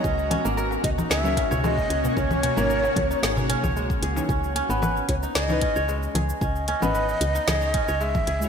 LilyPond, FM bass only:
\new Staff \with { instrumentName = "FM bass" } { \clef bass \time 4/4 \key cis \dorian \tempo 4 = 113 cis,8 r16 gis,,8 r16 cis,16 r16 cis,8 r16 cis,8 r16 cis,16 r16 | cis,8 r16 gis,,8 r16 cis,16 r16 gis,,8 r16 cis,8 r16 cis,16 r16 | cis,8 r16 gis,,8 r16 cis,16 r16 cis,8 r16 cis,8 r16 cis,16 r16 | cis,8 r16 gis,,8 r16 cis,16 r16 cis,8 r16 cis,8 r16 cis,16 r16 | }